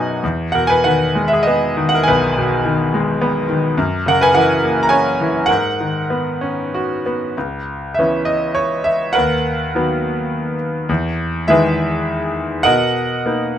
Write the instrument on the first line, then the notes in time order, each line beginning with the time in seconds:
grand piano
Already playing: F#2 B2 F#3 D#4 A#4 B4 C#5 D#5 F#5 G#5
0.23 E2
0.52 B2 A#4 F#5
0.67 B4 G#5
0.84 D#3 F#5
0.88 B4
1.15 G#3
1.28 E5
1.33 G#4
1.43 D#5
1.47 B3 G#4
1.77 D#3
1.89 F#5
1.94 A#4
2.03 G#5
2.08 B1 B4
2.38 B2
2.65 D#3
2.94 G#3
3.21 B3
3.49 D#3
3.77 F#2
4.06 C#3 A#4 F#5
4.21 B4 G#5
4.34 E3 A#4 F#5
4.63 A#3
4.83 A#5
4.89 C#4 C#5 G#5
5.21 E3
5.46 A#4 F#5
5.50 G#2
5.81 D#3
6.10 B3
6.41 C#4
6.74 F#4
7.06 B3
7.37 C#2
7.94 E5
7.99 E3 B3 C#4
8.25 D#5
8.55 C#5
8.84 E5
9.13 A#4 B4 F#5
9.18 D#2
9.75 D#3 F#3 B3
10.89 E2
11.48 D#3 E3 G#3 G#4 B4 E5
12.63 B2 A#4 D#5 F#5
13.26 A#3 B3 D#4